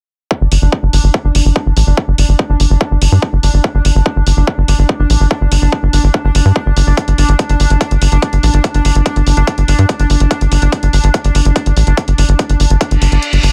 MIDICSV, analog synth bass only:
0, 0, Header, 1, 2, 480
1, 0, Start_track
1, 0, Tempo, 416667
1, 354, Time_signature, 4, 2, 24, 8
1, 15580, End_track
2, 0, Start_track
2, 0, Title_t, "Analog synth bass"
2, 0, Program_c, 0, 38
2, 474, Note_on_c, 0, 31, 86
2, 552, Note_off_c, 0, 31, 0
2, 594, Note_on_c, 0, 31, 96
2, 672, Note_off_c, 0, 31, 0
2, 714, Note_on_c, 0, 31, 86
2, 792, Note_off_c, 0, 31, 0
2, 954, Note_on_c, 0, 31, 87
2, 1032, Note_off_c, 0, 31, 0
2, 1074, Note_on_c, 0, 31, 97
2, 1152, Note_off_c, 0, 31, 0
2, 1194, Note_on_c, 0, 31, 92
2, 1272, Note_off_c, 0, 31, 0
2, 1434, Note_on_c, 0, 31, 84
2, 1512, Note_off_c, 0, 31, 0
2, 1554, Note_on_c, 0, 31, 98
2, 1632, Note_off_c, 0, 31, 0
2, 1674, Note_on_c, 0, 31, 88
2, 1752, Note_off_c, 0, 31, 0
2, 1914, Note_on_c, 0, 31, 84
2, 1992, Note_off_c, 0, 31, 0
2, 2034, Note_on_c, 0, 33, 104
2, 2112, Note_off_c, 0, 33, 0
2, 2154, Note_on_c, 0, 31, 92
2, 2232, Note_off_c, 0, 31, 0
2, 2394, Note_on_c, 0, 31, 89
2, 2472, Note_off_c, 0, 31, 0
2, 2514, Note_on_c, 0, 31, 92
2, 2592, Note_off_c, 0, 31, 0
2, 2634, Note_on_c, 0, 31, 87
2, 2712, Note_off_c, 0, 31, 0
2, 2874, Note_on_c, 0, 31, 83
2, 2952, Note_off_c, 0, 31, 0
2, 2994, Note_on_c, 0, 31, 95
2, 3072, Note_off_c, 0, 31, 0
2, 3114, Note_on_c, 0, 31, 95
2, 3192, Note_off_c, 0, 31, 0
2, 3354, Note_on_c, 0, 31, 83
2, 3432, Note_off_c, 0, 31, 0
2, 3474, Note_on_c, 0, 31, 96
2, 3552, Note_off_c, 0, 31, 0
2, 3594, Note_on_c, 0, 43, 92
2, 3672, Note_off_c, 0, 43, 0
2, 3834, Note_on_c, 0, 31, 87
2, 3912, Note_off_c, 0, 31, 0
2, 3954, Note_on_c, 0, 31, 95
2, 4032, Note_off_c, 0, 31, 0
2, 4074, Note_on_c, 0, 31, 91
2, 4152, Note_off_c, 0, 31, 0
2, 4314, Note_on_c, 0, 31, 88
2, 4392, Note_off_c, 0, 31, 0
2, 4434, Note_on_c, 0, 31, 96
2, 4512, Note_off_c, 0, 31, 0
2, 4554, Note_on_c, 0, 31, 94
2, 4632, Note_off_c, 0, 31, 0
2, 4794, Note_on_c, 0, 31, 88
2, 4872, Note_off_c, 0, 31, 0
2, 4914, Note_on_c, 0, 31, 92
2, 4992, Note_off_c, 0, 31, 0
2, 5034, Note_on_c, 0, 31, 88
2, 5112, Note_off_c, 0, 31, 0
2, 5274, Note_on_c, 0, 31, 90
2, 5352, Note_off_c, 0, 31, 0
2, 5393, Note_on_c, 0, 31, 99
2, 5472, Note_off_c, 0, 31, 0
2, 5514, Note_on_c, 0, 31, 91
2, 5592, Note_off_c, 0, 31, 0
2, 5754, Note_on_c, 0, 31, 85
2, 5832, Note_off_c, 0, 31, 0
2, 5873, Note_on_c, 0, 33, 100
2, 5951, Note_off_c, 0, 33, 0
2, 5994, Note_on_c, 0, 31, 89
2, 6072, Note_off_c, 0, 31, 0
2, 6233, Note_on_c, 0, 31, 85
2, 6312, Note_off_c, 0, 31, 0
2, 6354, Note_on_c, 0, 31, 92
2, 6432, Note_off_c, 0, 31, 0
2, 6474, Note_on_c, 0, 31, 92
2, 6552, Note_off_c, 0, 31, 0
2, 6714, Note_on_c, 0, 31, 89
2, 6792, Note_off_c, 0, 31, 0
2, 6834, Note_on_c, 0, 31, 91
2, 6912, Note_off_c, 0, 31, 0
2, 6954, Note_on_c, 0, 31, 91
2, 7032, Note_off_c, 0, 31, 0
2, 7194, Note_on_c, 0, 31, 91
2, 7272, Note_off_c, 0, 31, 0
2, 7314, Note_on_c, 0, 31, 102
2, 7392, Note_off_c, 0, 31, 0
2, 7434, Note_on_c, 0, 43, 92
2, 7512, Note_off_c, 0, 43, 0
2, 7674, Note_on_c, 0, 31, 86
2, 7752, Note_off_c, 0, 31, 0
2, 7794, Note_on_c, 0, 31, 100
2, 7872, Note_off_c, 0, 31, 0
2, 7914, Note_on_c, 0, 31, 88
2, 7992, Note_off_c, 0, 31, 0
2, 8154, Note_on_c, 0, 31, 88
2, 8232, Note_off_c, 0, 31, 0
2, 8274, Note_on_c, 0, 31, 91
2, 8352, Note_off_c, 0, 31, 0
2, 8394, Note_on_c, 0, 31, 90
2, 8472, Note_off_c, 0, 31, 0
2, 8634, Note_on_c, 0, 31, 83
2, 8712, Note_off_c, 0, 31, 0
2, 8754, Note_on_c, 0, 31, 95
2, 8832, Note_off_c, 0, 31, 0
2, 8874, Note_on_c, 0, 31, 90
2, 8952, Note_off_c, 0, 31, 0
2, 9114, Note_on_c, 0, 31, 88
2, 9192, Note_off_c, 0, 31, 0
2, 9234, Note_on_c, 0, 31, 94
2, 9312, Note_off_c, 0, 31, 0
2, 9354, Note_on_c, 0, 31, 90
2, 9432, Note_off_c, 0, 31, 0
2, 9594, Note_on_c, 0, 31, 83
2, 9672, Note_off_c, 0, 31, 0
2, 9714, Note_on_c, 0, 33, 103
2, 9792, Note_off_c, 0, 33, 0
2, 9834, Note_on_c, 0, 31, 90
2, 9912, Note_off_c, 0, 31, 0
2, 10074, Note_on_c, 0, 31, 84
2, 10152, Note_off_c, 0, 31, 0
2, 10195, Note_on_c, 0, 31, 96
2, 10272, Note_off_c, 0, 31, 0
2, 10315, Note_on_c, 0, 31, 87
2, 10392, Note_off_c, 0, 31, 0
2, 10554, Note_on_c, 0, 31, 91
2, 10632, Note_off_c, 0, 31, 0
2, 10674, Note_on_c, 0, 31, 95
2, 10752, Note_off_c, 0, 31, 0
2, 10794, Note_on_c, 0, 31, 96
2, 10872, Note_off_c, 0, 31, 0
2, 11034, Note_on_c, 0, 31, 87
2, 11112, Note_off_c, 0, 31, 0
2, 11154, Note_on_c, 0, 31, 95
2, 11232, Note_off_c, 0, 31, 0
2, 11274, Note_on_c, 0, 43, 93
2, 11352, Note_off_c, 0, 43, 0
2, 11514, Note_on_c, 0, 31, 89
2, 11592, Note_off_c, 0, 31, 0
2, 11634, Note_on_c, 0, 31, 101
2, 11712, Note_off_c, 0, 31, 0
2, 11754, Note_on_c, 0, 31, 86
2, 11832, Note_off_c, 0, 31, 0
2, 11995, Note_on_c, 0, 31, 83
2, 12072, Note_off_c, 0, 31, 0
2, 12115, Note_on_c, 0, 31, 97
2, 12192, Note_off_c, 0, 31, 0
2, 12234, Note_on_c, 0, 31, 86
2, 12312, Note_off_c, 0, 31, 0
2, 12475, Note_on_c, 0, 31, 86
2, 12552, Note_off_c, 0, 31, 0
2, 12595, Note_on_c, 0, 31, 96
2, 12672, Note_off_c, 0, 31, 0
2, 12715, Note_on_c, 0, 31, 96
2, 12792, Note_off_c, 0, 31, 0
2, 12955, Note_on_c, 0, 31, 86
2, 13032, Note_off_c, 0, 31, 0
2, 13075, Note_on_c, 0, 31, 101
2, 13152, Note_off_c, 0, 31, 0
2, 13195, Note_on_c, 0, 31, 92
2, 13272, Note_off_c, 0, 31, 0
2, 13435, Note_on_c, 0, 31, 90
2, 13512, Note_off_c, 0, 31, 0
2, 13554, Note_on_c, 0, 33, 99
2, 13632, Note_off_c, 0, 33, 0
2, 13675, Note_on_c, 0, 31, 91
2, 13752, Note_off_c, 0, 31, 0
2, 13914, Note_on_c, 0, 31, 88
2, 13992, Note_off_c, 0, 31, 0
2, 14034, Note_on_c, 0, 31, 99
2, 14112, Note_off_c, 0, 31, 0
2, 14154, Note_on_c, 0, 31, 94
2, 14232, Note_off_c, 0, 31, 0
2, 14394, Note_on_c, 0, 31, 85
2, 14472, Note_off_c, 0, 31, 0
2, 14514, Note_on_c, 0, 31, 94
2, 14592, Note_off_c, 0, 31, 0
2, 14634, Note_on_c, 0, 31, 91
2, 14712, Note_off_c, 0, 31, 0
2, 14874, Note_on_c, 0, 31, 91
2, 14952, Note_off_c, 0, 31, 0
2, 14994, Note_on_c, 0, 31, 98
2, 15072, Note_off_c, 0, 31, 0
2, 15114, Note_on_c, 0, 31, 90
2, 15192, Note_off_c, 0, 31, 0
2, 15354, Note_on_c, 0, 31, 84
2, 15432, Note_off_c, 0, 31, 0
2, 15474, Note_on_c, 0, 31, 97
2, 15552, Note_off_c, 0, 31, 0
2, 15580, End_track
0, 0, End_of_file